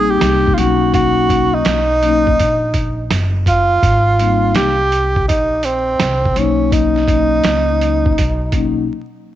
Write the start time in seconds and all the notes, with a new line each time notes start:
Already playing: A#1 G3 A#3 C4 D#4 G#4
0.10 G4
0.21 C2, snare, closed hi-hat
0.47 kick
0.54 B1 F#3 A#3 F4, closed hi-hat
0.58 C#4 D#4 F#4
0.94 F#4, kick, closed hi-hat
1.29 kick, closed hi-hat
1.54 D#4
1.65 B1, snare, closed hi-hat
2.01 F#3 A#3 C#4 D#4, closed hi-hat
2.27 kick
2.39 A#1, kick, closed hi-hat
2.74 kick, closed hi-hat
3.11 F#1, snare, closed hi-hat
3.46 F4, kick, closed hi-hat
3.83 G#1, kick, closed hi-hat
4.18 G3 A#3 C4 D#4, closed hi-hat
4.55 C2 G4, snare, closed hi-hat
4.92 closed hi-hat
5.16 kick
5.28 A#1 D#4, kick, closed hi-hat
5.63 C4, closed hi-hat
6.00 C2, snare, closed hi-hat
6.25 kick
6.34 B1 F#3 A#3 C#4 D#4, closed hi-hat
6.72 D#4, kick, closed hi-hat
6.96 snare
7.07 F#3 A#3 C#4 D#4, kick, closed hi-hat
7.44 C#2, snare, closed hi-hat
7.81 closed hi-hat
8.06 kick
8.18 B1, kick, closed hi-hat
8.52 F#3 A#3 C#4 D#4, kick, closed hi-hat